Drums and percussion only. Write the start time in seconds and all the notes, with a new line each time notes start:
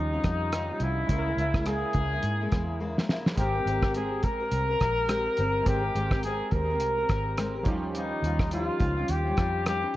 0.24 kick, cross-stick, closed hi-hat
0.52 cross-stick, closed hi-hat
0.80 closed hi-hat
1.09 kick, closed hi-hat
1.38 closed hi-hat
1.54 kick, cross-stick
1.66 cross-stick, closed hi-hat
1.93 kick, closed hi-hat
2.23 closed hi-hat
2.52 kick, cross-stick, closed hi-hat
2.98 snare
3.09 snare
3.26 snare
3.37 kick, closed hi-hat
3.67 closed hi-hat
3.83 kick, cross-stick
3.94 closed hi-hat
4.23 kick, closed hi-hat
4.51 closed hi-hat
4.81 kick, cross-stick, closed hi-hat
5.09 cross-stick, closed hi-hat
5.37 closed hi-hat
5.66 kick, closed hi-hat
5.96 closed hi-hat
6.11 kick, cross-stick
6.23 closed hi-hat
6.51 kick, closed hi-hat
6.80 closed hi-hat
7.09 kick, cross-stick, closed hi-hat
7.38 cross-stick, closed hi-hat
7.65 kick, closed hi-hat
7.95 closed hi-hat
8.24 closed hi-hat
8.39 kick, cross-stick
8.51 closed hi-hat
8.80 kick, closed hi-hat
9.08 closed hi-hat
9.37 kick, cross-stick, closed hi-hat
9.66 cross-stick, closed hi-hat